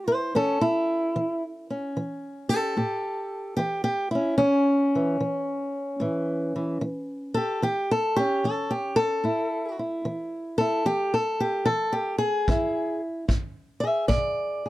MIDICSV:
0, 0, Header, 1, 3, 480
1, 0, Start_track
1, 0, Tempo, 808625
1, 1645, Time_signature, 4, 2, 24, 8
1, 8721, End_track
2, 0, Start_track
2, 0, Title_t, "Steel-string acoustic guitar"
2, 0, Program_c, 0, 25
2, 0, Note_on_c, 0, 45, 71
2, 44, Note_on_c, 0, 64, 80
2, 45, Note_on_c, 0, 72, 88
2, 177, Note_off_c, 0, 45, 0
2, 205, Note_off_c, 0, 64, 0
2, 205, Note_off_c, 0, 72, 0
2, 207, Note_on_c, 0, 52, 61
2, 209, Note_on_c, 0, 61, 80
2, 215, Note_on_c, 0, 69, 96
2, 362, Note_off_c, 0, 61, 0
2, 364, Note_on_c, 0, 64, 99
2, 371, Note_off_c, 0, 69, 0
2, 655, Note_off_c, 0, 52, 0
2, 687, Note_on_c, 0, 52, 72
2, 845, Note_off_c, 0, 64, 0
2, 1011, Note_on_c, 0, 61, 41
2, 1135, Note_off_c, 0, 52, 0
2, 1167, Note_on_c, 0, 52, 64
2, 1480, Note_on_c, 0, 69, 103
2, 1492, Note_on_c, 0, 67, 55
2, 1615, Note_off_c, 0, 52, 0
2, 1642, Note_on_c, 0, 45, 65
2, 1644, Note_off_c, 0, 67, 0
2, 1646, Note_on_c, 0, 67, 52
2, 1664, Note_off_c, 0, 61, 0
2, 2092, Note_off_c, 0, 45, 0
2, 2114, Note_off_c, 0, 67, 0
2, 2117, Note_on_c, 0, 67, 92
2, 2122, Note_off_c, 0, 69, 0
2, 2129, Note_on_c, 0, 52, 64
2, 2271, Note_off_c, 0, 67, 0
2, 2278, Note_on_c, 0, 67, 100
2, 2437, Note_off_c, 0, 67, 0
2, 2439, Note_on_c, 0, 64, 77
2, 2463, Note_on_c, 0, 61, 49
2, 2576, Note_off_c, 0, 52, 0
2, 2596, Note_off_c, 0, 64, 0
2, 2598, Note_off_c, 0, 61, 0
2, 2598, Note_on_c, 0, 61, 108
2, 2612, Note_on_c, 0, 52, 66
2, 2933, Note_off_c, 0, 52, 0
2, 2940, Note_on_c, 0, 52, 45
2, 3087, Note_off_c, 0, 52, 0
2, 3090, Note_on_c, 0, 52, 61
2, 3536, Note_off_c, 0, 52, 0
2, 3561, Note_on_c, 0, 45, 74
2, 3569, Note_on_c, 0, 52, 47
2, 3890, Note_off_c, 0, 52, 0
2, 3892, Note_on_c, 0, 52, 48
2, 4012, Note_off_c, 0, 45, 0
2, 4041, Note_off_c, 0, 52, 0
2, 4042, Note_off_c, 0, 61, 0
2, 4044, Note_on_c, 0, 52, 65
2, 4359, Note_on_c, 0, 69, 103
2, 4375, Note_on_c, 0, 67, 52
2, 4493, Note_off_c, 0, 52, 0
2, 4522, Note_off_c, 0, 69, 0
2, 4525, Note_on_c, 0, 52, 71
2, 4528, Note_off_c, 0, 67, 0
2, 4530, Note_on_c, 0, 67, 100
2, 4688, Note_off_c, 0, 67, 0
2, 4698, Note_on_c, 0, 69, 104
2, 4846, Note_on_c, 0, 67, 107
2, 4852, Note_off_c, 0, 69, 0
2, 4862, Note_on_c, 0, 61, 44
2, 4974, Note_off_c, 0, 52, 0
2, 5006, Note_off_c, 0, 67, 0
2, 5011, Note_on_c, 0, 52, 60
2, 5016, Note_on_c, 0, 69, 88
2, 5168, Note_on_c, 0, 67, 86
2, 5171, Note_off_c, 0, 69, 0
2, 5318, Note_on_c, 0, 69, 126
2, 5327, Note_off_c, 0, 67, 0
2, 5457, Note_off_c, 0, 52, 0
2, 5474, Note_off_c, 0, 61, 0
2, 5483, Note_on_c, 0, 45, 72
2, 5488, Note_on_c, 0, 64, 53
2, 5802, Note_off_c, 0, 69, 0
2, 5811, Note_off_c, 0, 64, 0
2, 5813, Note_on_c, 0, 64, 46
2, 5933, Note_off_c, 0, 45, 0
2, 5966, Note_on_c, 0, 52, 65
2, 6279, Note_on_c, 0, 69, 94
2, 6293, Note_off_c, 0, 64, 0
2, 6295, Note_on_c, 0, 64, 53
2, 6415, Note_off_c, 0, 52, 0
2, 6442, Note_off_c, 0, 69, 0
2, 6443, Note_off_c, 0, 64, 0
2, 6444, Note_on_c, 0, 52, 68
2, 6446, Note_on_c, 0, 67, 98
2, 6605, Note_off_c, 0, 67, 0
2, 6611, Note_on_c, 0, 69, 94
2, 6768, Note_off_c, 0, 69, 0
2, 6769, Note_on_c, 0, 67, 84
2, 6893, Note_off_c, 0, 52, 0
2, 6918, Note_on_c, 0, 69, 108
2, 6927, Note_off_c, 0, 67, 0
2, 6933, Note_on_c, 0, 52, 59
2, 7079, Note_on_c, 0, 67, 89
2, 7082, Note_off_c, 0, 69, 0
2, 7230, Note_off_c, 0, 67, 0
2, 7233, Note_on_c, 0, 68, 108
2, 7377, Note_off_c, 0, 52, 0
2, 7412, Note_on_c, 0, 52, 78
2, 7416, Note_on_c, 0, 64, 53
2, 7718, Note_off_c, 0, 68, 0
2, 7856, Note_off_c, 0, 52, 0
2, 7882, Note_off_c, 0, 64, 0
2, 7885, Note_on_c, 0, 64, 65
2, 8193, Note_on_c, 0, 76, 91
2, 8212, Note_on_c, 0, 68, 51
2, 8333, Note_off_c, 0, 64, 0
2, 8356, Note_off_c, 0, 76, 0
2, 8359, Note_on_c, 0, 74, 102
2, 8369, Note_on_c, 0, 47, 71
2, 8689, Note_off_c, 0, 68, 0
2, 8700, Note_on_c, 0, 68, 47
2, 8721, Note_off_c, 0, 47, 0
2, 8721, Note_off_c, 0, 68, 0
2, 8721, Note_off_c, 0, 74, 0
2, 8721, End_track
3, 0, Start_track
3, 0, Title_t, "Drums"
3, 7407, Note_on_c, 9, 36, 64
3, 7467, Note_off_c, 9, 36, 0
3, 7888, Note_on_c, 9, 36, 72
3, 7947, Note_off_c, 9, 36, 0
3, 8366, Note_on_c, 9, 36, 74
3, 8425, Note_off_c, 9, 36, 0
3, 8721, End_track
0, 0, End_of_file